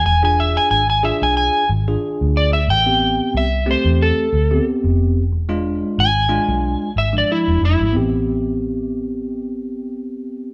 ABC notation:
X:1
M:4/4
L:1/16
Q:"Swing 16ths" 1/4=91
K:Am
V:1 name="Electric slide guitar"
^g g e g g g e g g2 z4 d e | g4 e2 c2 A4 z4 | z4 ^g6 e d E2 E2 | z16 |]
V:2 name="Tine electric piano"
z [DF^G]4 z [DFG]4 z [DFG]4 z | z [B,CG]4 z [A,CG]4 z [B,CG]4 z | z [^G,DF]4 z [G,DF]4 z [F,G,D]4 z | [B,CG]16 |]
V:3 name="Fingered electric bass" clef=bass
E,,,4 ^G,,,3 B,,,2 z G,,,2 z D,,3 | A,,,4 C,,3 E,,2 z D,,2 z F,,,3 | E,,,4 ^G,,,3 B,,,2 z G,,,2 z E,,, F,,, G,,, | A,,,16 |]